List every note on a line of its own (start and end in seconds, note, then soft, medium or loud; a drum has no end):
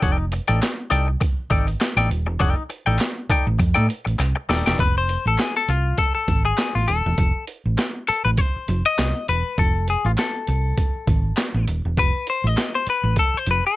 0.02 0.39 F1 loud
0.02 0.24 D#4 medium
0.02 0.17 A4 medium
0.02 0.18 D5 loud
0.02 0.17 G5 loud
0.02 kick loud
0.02 closed hi-hat loud
0.18 muted clean electric guitar stroke soft
0.32 muted clean electric guitar stroke soft
0.32 closed hi-hat medium
0.48 0.59 A1 medium
0.48 0.60 D#4 medium
0.48 0.60 A4 medium
0.48 0.61 D5 medium
0.48 0.61 G5 medium
0.61 muted clean electric guitar stroke medium
0.61 snare medium
0.61 clap loud
0.61 clap medium
0.61 closed hi-hat medium
0.90 1.15 C2 medium
0.90 1.09 D#4 medium
0.90 1.08 A4 medium
0.90 1.07 D5 medium
0.90 1.07 G5 medium
0.90 closed hi-hat medium
1.08 muted clean electric guitar stroke medium
1.21 muted clean electric guitar stroke medium
1.21 kick medium
1.21 closed hi-hat medium
1.50 1.74 G#1 loud
1.50 1.69 D#4 medium
1.50 1.66 A4 medium
1.50 1.66 D5 medium
1.50 1.66 G5 medium
1.50 kick loud
1.50 closed hi-hat medium
1.67 muted clean electric guitar stroke medium
1.67 closed hi-hat medium
1.81 muted clean electric guitar stroke soft
1.81 snare loud
1.81 clap loud
1.81 clap medium
1.81 closed hi-hat medium
1.97 2.07 A1 loud
1.97 2.09 D#4 medium
1.97 2.10 A4 medium
1.97 2.10 D5 medium
1.97 2.10 G5 loud
2.10 2.26 D#1 loud
2.10 closed hi-hat medium
2.26 2.37 E1 medium
2.26 muted clean electric guitar stroke soft
2.40 2.54 F1 loud
2.40 2.62 D#4 medium
2.40 2.56 A4 loud
2.40 2.55 D5 loud
2.40 2.55 G5 loud
2.40 kick loud
2.40 closed hi-hat medium
2.56 muted clean electric guitar stroke soft
2.70 muted clean electric guitar stroke soft
2.70 closed hi-hat medium
2.86 2.97 A1 medium
2.86 2.98 D#4 medium
2.86 2.99 A4 medium
2.86 2.99 D5 medium
2.86 3.00 G5 medium
2.99 muted clean electric guitar stroke soft
2.99 snare loud
2.99 clap loud
2.99 closed hi-hat medium
3.01 clap medium
3.29 3.48 D#4 medium
3.29 3.47 A4 medium
3.29 3.46 D5 medium
3.29 3.46 G5 medium
3.29 muted fingered electric bass stroke soft
3.29 kick medium
3.29 closed hi-hat medium
3.47 3.57 A1 medium
3.47 muted clean electric guitar stroke soft
3.59 3.73 F2 medium
3.59 muted clean electric guitar stroke medium
3.59 kick medium
3.59 closed hi-hat medium
3.74 3.87 A2 loud
3.74 3.86 D#4 medium
3.74 3.87 A4 medium
3.74 3.88 D5 medium
3.74 3.88 G5 medium
3.88 muted clean electric guitar stroke soft
3.88 closed hi-hat medium
4.05 4.17 A1 medium
4.05 muted clean electric guitar stroke soft
4.05 closed hi-hat soft
4.19 4.33 C2 loud
4.19 muted clean electric guitar stroke soft
4.19 clap loud
4.19 closed hi-hat medium
4.36 muted clean electric guitar stroke medium
4.49 4.62 D#1 loud
4.49 4.66 D#4 medium
4.49 4.66 A4 medium
4.49 4.65 D5 medium
4.49 4.65 G5 medium
4.49 snare medium
4.49 open hi-hat medium
4.66 4.77 E1 loud
4.66 4.82 D#4 medium
4.66 4.82 A4 medium
4.66 4.81 D5 medium
4.66 4.80 G5 medium
4.66 snare loud
4.66 closed hi-hat medium
4.79 5.16 F1 loud
4.79 4.97 B4 loud
4.79 kick loud
4.79 closed hi-hat medium
4.98 5.25 C5 loud
5.09 closed hi-hat medium
5.26 5.36 A1 medium
5.26 5.40 A4 loud
5.38 snare loud
5.38 clap medium
5.38 closed hi-hat medium
5.40 5.56 G#4 loud
5.40 clap medium
5.57 5.70 A4 loud
5.69 5.92 C2 medium
5.69 6.00 F4 medium
5.69 closed hi-hat medium
5.98 6.13 A4 loud
5.98 kick medium
5.98 closed hi-hat medium
6.15 6.43 A4 medium
6.28 6.52 G#1 loud
6.28 kick loud
6.28 closed hi-hat medium
6.45 6.73 G#4 medium
6.58 snare loud
6.58 clap loud
6.58 clap medium
6.58 closed hi-hat medium
6.75 6.86 A1 medium
6.75 6.89 F4 medium
6.88 7.02 D#1 loud
6.88 7.44 A4 medium
6.88 closed hi-hat medium
7.06 7.16 E1 loud
7.18 7.31 F1 loud
7.18 kick loud
7.18 closed hi-hat medium
7.47 closed hi-hat medium
7.66 7.76 A1 medium
7.78 snare loud
7.78 clap loud
7.78 clap medium
7.78 closed hi-hat medium
8.08 8.24 A4 loud
8.08 muted fingered electric bass stroke soft
8.08 closed hi-hat medium
8.25 8.36 A1 loud
8.25 8.30 B4 medium
8.37 8.85 C5 loud
8.37 kick medium
8.37 closed hi-hat medium
8.56 muted fingered electric bass stroke soft
8.68 8.82 F1 loud
8.68 closed hi-hat medium
8.86 9.29 D#5 loud
8.99 9.12 C2 loud
8.99 snare loud
8.99 clap medium
8.99 clap loud
8.99 closed hi-hat medium
9.28 9.42 E1 medium
9.28 9.59 B4 loud
9.28 closed hi-hat medium
9.58 9.95 F1 loud
9.58 9.87 A4 loud
9.58 kick loud
9.58 closed hi-hat medium
9.88 10.06 G#4 medium
9.88 closed hi-hat medium
10.05 10.15 A1 medium
10.05 10.11 F4 medium
10.18 11.65 A4 medium
10.18 snare loud
10.18 clap medium
10.18 closed hi-hat medium
10.47 10.72 C2 medium
10.47 closed hi-hat medium
10.78 kick medium
10.78 closed hi-hat medium
11.07 11.31 G#1 loud
11.07 kick loud
11.07 closed hi-hat medium
11.37 snare loud
11.37 clap loud
11.37 closed hi-hat medium
11.54 11.65 A1 loud
11.68 11.81 D#1 loud
11.68 closed hi-hat medium
11.85 11.97 E1 medium
11.97 12.11 F1 loud
11.97 12.29 B4 loud
11.97 kick loud
11.97 closed hi-hat medium
12.27 12.47 C5 medium
12.27 closed hi-hat medium
12.44 12.55 A1 medium
12.44 12.75 D#5 medium
12.57 snare loud
12.57 clap loud
12.57 clap medium
12.57 closed hi-hat medium
12.75 12.87 C5 medium
12.87 13.19 B4 medium
12.87 muted fingered electric bass stroke soft
12.87 closed hi-hat medium
13.04 13.14 A1 medium
13.16 13.37 A4 loud
13.16 kick medium
13.16 closed hi-hat loud
13.34 13.49 C5 medium
13.34 muted fingered electric bass stroke soft
13.46 13.60 F1 loud
13.46 closed hi-hat medium
13.51 13.65 B4 medium
13.67 13.76 A4 loud